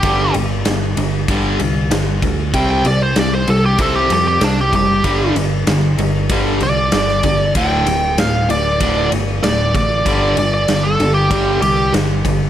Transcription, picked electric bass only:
X:1
M:4/4
L:1/8
Q:1/4=96
K:Gmix
V:1 name="Picked electric bass" clef=bass
G,,, G,,, G,,, G,,, G,,, C,, G,,, D,, | C,, C,, C,, C,, C,, F,, C,, ^F,,, | G,,, G,,, G,,, G,,, G,,, C,, G,,, G,,, | D,,, D,,, D,,, D,,, D,,, G,,, D,,, A,,, |
G,,, G,,, G,,, G,,, G,,, C,, G,,, G,,, |]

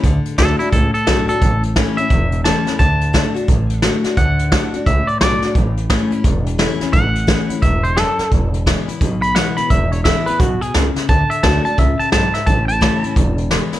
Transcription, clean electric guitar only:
X:1
M:4/4
L:1/8
Q:"Swing" 1/4=174
K:A
V:1 name="Clean electric guitar"
z2 A E A A2 A- | A z2 e3 a2 | a6 z2 | f4 e d d2 |
z8 | f4 e =c A2 | z4 z b f b | e c e B F G z2 |
a e a a e a a e | a a3 z4 |]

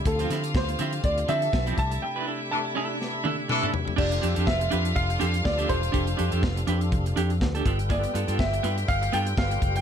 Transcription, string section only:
X:1
M:4/4
L:1/8
Q:"Swing 16ths" 1/4=122
K:Flyd
V:1 name="String section"
[Ff]4- [Ff] [Aa]2 [Ee]- | [Ee]8 | [Ff]8- | [Ff]6 z [Gg]- |
[Gg]8 |]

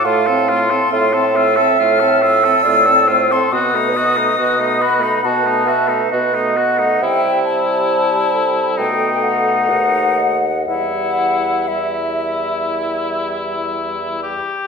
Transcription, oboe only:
X:1
M:4/4
L:1/16
Q:1/4=68
K:Em
V:1 name="Oboe"
=F A F A F A F A F A F A F A F A | F ^D F D F D F D F D F D F D F D | E8 ^D8 | E4 E8- E2 G2 |]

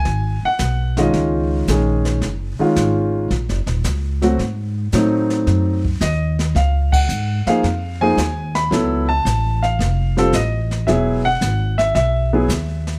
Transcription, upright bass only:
X:1
M:4/4
L:1/8
Q:"Swing" 1/4=111
K:Abdor
V:1 name="Upright bass" clef=bass
A,,, z C,,2 D,,2 B,,,2 | G,,, z A,,,2 (3B,,, G,,, E,,, D,,2 | A,,2 =A,,2 G,,2 E,,2 | D,,2 A,, z F,,2 E,,2 |
D,,2 =A,,,2 F,,,2 A,,,2 | =E,,,2 ^G,,,2 =B,,,2 ^D,,2 |]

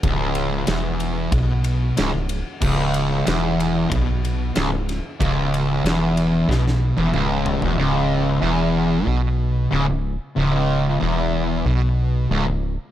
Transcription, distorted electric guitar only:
X:1
M:4/4
L:1/16
Q:1/4=93
K:C#m
V:1 name="Distorted electric guitar" clef=bass
C,,4 E,,4 B,,4 C,, C,,2 z | C,,4 E,,4 B,,4 C,, C,,2 z | C,,4 E,,4 B,,3 E,, C,,3 E,, | C,,4 E,,4 B,,4 C,, C,,2 z |
C,,4 E,,4 B,,4 C,, C,,2 z |]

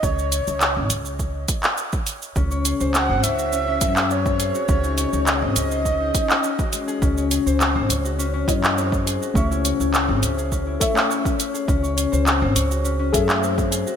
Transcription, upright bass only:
X:1
M:4/4
L:1/16
Q:1/4=103
K:F#dor
V:1 name="Upright bass" clef=bass
C,,3 C,,2 G,,, C,,4 z6 | C,,3 C,,2 G,,, C,,4 F,,4- F,, z | C,,3 C,,2 G,,, C,,4 z6 | C,,3 C,,2 G,,, C,,4 F,,4- F,, z |
C,,3 C,,2 G,,, C,,4 z6 | C,,3 C,,2 G,,, C,,4 F,,4- F,, z |]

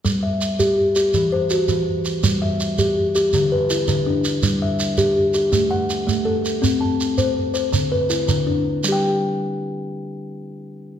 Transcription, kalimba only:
X:1
M:12/8
L:1/8
Q:3/8=109
K:G
V:1 name="Kalimba"
z e3 z G2 c F3 z | z e3 z G2 B E2 D2- | D e3 z G2 f3 A2- | A a3 z c2 B E2 D2- |
D z8 z3 |]
V:2 name="Kalimba" clef=bass
G,2 z G2 z E,2 z E,2 z | G,2 z G2 z D,2 z D,2 z | G,2 z G2 z A,2 z A,2 z | C2 z c2 z D,2 z D,2 z |
[G,Gg]12 |]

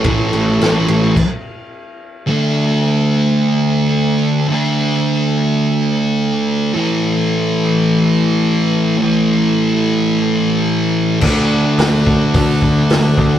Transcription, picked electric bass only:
X:1
M:4/4
L:1/8
Q:1/4=108
K:Dlyd
V:1 name="Picked electric bass" clef=bass
A,,, A,,, A,,, A,,, z4 | z8 | z8 | z8 |
z8 | D,,2 D,,2 D,, D,, D,, D,, |]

